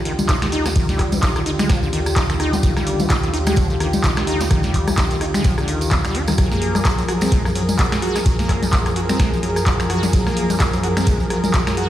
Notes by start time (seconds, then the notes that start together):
Already playing: D#2 D3 F4 G4, impact
0.05 D#3, open hi-hat
0.19 closed hi-hat, tambourine, low conga
0.29 D#4, kick, cross-stick, clap, closed hi-hat, tambourine
0.42 D#3, finger snap, snare, closed hi-hat, tambourine
0.52 D#4, open hi-hat
0.66 G3, cross-stick, snare, closed hi-hat, tambourine
0.76 D#3, kick, closed hi-hat, tambourine
0.89 G3, snare, closed hi-hat, tambourine
0.99 kick, cross-stick, clap, open hi-hat
1.12 D#3, closed hi-hat, tambourine, low conga
1.23 D#4, kick, snare, clap, closed hi-hat, tambourine
1.36 D#3, cross-stick, closed hi-hat, tambourine
1.46 D#4, open hi-hat
1.59 G#3, finger snap, closed hi-hat, tambourine, low conga
1.69 F3, kick, cross-stick, snare, closed hi-hat, tambourine
1.83 D3, tambourine
1.93 D#3, open hi-hat
2.06 cross-stick, closed hi-hat, tambourine
2.16 D#4, kick, clap, closed hi-hat, tambourine
2.30 D#3, finger snap, closed hi-hat, tambourine
2.40 D#4, cross-stick, open hi-hat
2.53 G3, closed hi-hat, tambourine, low conga
2.63 D#3, kick, closed hi-hat, tambourine
2.77 G3, cross-stick, snare, tambourine
2.87 open hi-hat
3.00 D#3, closed hi-hat, tambourine, low conga
3.10 D#4, kick, cross-stick, snare, clap, closed hi-hat, tambourine
3.23 D#3, closed hi-hat, tambourine
3.34 D#4, open hi-hat
3.47 G#3, finger snap, cross-stick, closed hi-hat, tambourine, low conga
3.56 F3, kick, closed hi-hat, tambourine
3.70 D3, tambourine
3.80 D#3, cross-stick, open hi-hat
3.93 closed hi-hat, tambourine, low conga
4.04 D#4, kick, clap, closed hi-hat, tambourine
4.16 D#3, finger snap, cross-stick, snare, closed hi-hat, tambourine
4.27 D#4, open hi-hat
4.41 G3, snare, closed hi-hat, tambourine
4.51 D#3, kick, cross-stick, closed hi-hat, tambourine
4.63 G3, snare, closed hi-hat, tambourine
4.74 kick, clap, open hi-hat
4.88 D#3, cross-stick, closed hi-hat, tambourine, low conga
4.98 D#4, kick, snare, clap, closed hi-hat, tambourine
5.10 D#3, closed hi-hat, tambourine
5.21 D#4, cross-stick, open hi-hat
5.34 G#3, finger snap, closed hi-hat, tambourine, low conga
5.44 F3, kick, snare, closed hi-hat, tambourine
5.58 D3, cross-stick, tambourine
5.68 D#3, open hi-hat
5.81 closed hi-hat, tambourine
5.91 D#4, kick, cross-stick, clap, closed hi-hat, tambourine
6.05 G3, finger snap, closed hi-hat, tambourine
6.15 D#4, open hi-hat
6.27 D#3, cross-stick, closed hi-hat, tambourine, low conga
6.38 F#2 F3 F#3 G#4 A#4, kick, cross-stick, closed hi-hat, tambourine
6.51 A#3, snare, tambourine
6.62 open hi-hat
6.75 F#3, cross-stick, closed hi-hat, tambourine, low conga
6.85 F#4, kick, snare, clap, closed hi-hat, tambourine
6.98 F#3, closed hi-hat, tambourine
7.08 F#4, cross-stick, open hi-hat
7.21 C4, finger snap, closed hi-hat, tambourine, low conga
7.32 G#3, kick, closed hi-hat, tambourine
7.45 F3, cross-stick, tambourine
7.55 F#3, open hi-hat
7.69 closed hi-hat, tambourine, low conga
7.78 F#4, kick, cross-stick, clap, closed hi-hat, tambourine
7.92 F#3, finger snap, snare, closed hi-hat, tambourine
8.02 F#4, open hi-hat
8.15 A#3, cross-stick, snare, closed hi-hat, tambourine
8.26 F#3, kick, closed hi-hat, tambourine
8.39 A#3, snare, closed hi-hat, tambourine
8.49 kick, cross-stick, clap, open hi-hat
8.63 F#3, closed hi-hat, tambourine, low conga
8.73 F#4, kick, snare, clap, closed hi-hat, tambourine
8.86 F#3, cross-stick, closed hi-hat, tambourine
8.96 F#4, open hi-hat
9.09 C4, finger snap, closed hi-hat, tambourine, low conga
9.20 G#3, kick, cross-stick, snare, closed hi-hat, tambourine
9.33 F3, tambourine
9.43 F#3, open hi-hat
9.56 cross-stick, closed hi-hat, tambourine
9.66 F#4, kick, clap, closed hi-hat, tambourine
9.80 F#3, finger snap, closed hi-hat, tambourine
9.90 F#4, cross-stick, open hi-hat
10.03 A#3, closed hi-hat, tambourine, low conga
10.13 F#3, kick, closed hi-hat, tambourine
10.26 A#3, cross-stick, snare, tambourine
10.37 open hi-hat
10.50 F#3, closed hi-hat, tambourine, low conga
10.60 F#4, kick, cross-stick, snare, clap, closed hi-hat, tambourine
10.73 F#3, closed hi-hat, tambourine
10.83 F#4, open hi-hat
10.97 C4, finger snap, cross-stick, closed hi-hat, tambourine, low conga
11.06 G#3, kick, closed hi-hat, tambourine
11.20 F3, tambourine
11.30 F#3, cross-stick, open hi-hat
11.44 closed hi-hat, tambourine, low conga
11.54 F#4, kick, clap, closed hi-hat, tambourine
11.67 F#3, finger snap, cross-stick, snare, closed hi-hat, tambourine
11.77 F#4, open hi-hat